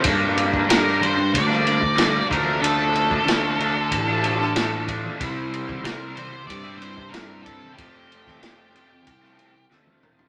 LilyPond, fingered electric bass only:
\new Staff \with { instrumentName = "Fingered electric bass" } { \clef bass \time 4/4 \key g \dorian \tempo 4 = 93 g,4 g,4 d,4. d,8~ | d,4 d,4 a,,2 | c,4 c,4 g,2 | f,4 f,4 c,4 d,8 e,8 | }